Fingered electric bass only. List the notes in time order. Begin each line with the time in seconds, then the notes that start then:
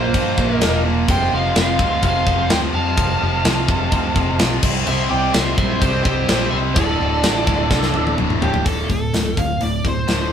Already playing: A#1
0.14 G2
0.38 A#1
0.62 E1
1.09 F1
1.32 F1
1.56 F1
1.79 D2
2.03 F1
2.26 F1
2.50 D2
2.73 F2
2.98 F1
3.21 F1
3.45 C2
3.69 F1
3.92 D2
4.16 F1
4.40 B1
4.63 C2
4.87 C2
5.11 C2
5.34 C2
5.58 A#1
5.82 C2
6.05 C2
6.29 A#1
6.52 C2
6.76 D1
6.99 D1
7.24 A1
7.47 D1
7.71 C2
7.96 D1
8.19 D1
8.66 D1
8.90 D1
9.14 D1
9.38 D1
9.61 D1
9.85 D1
10.09 D1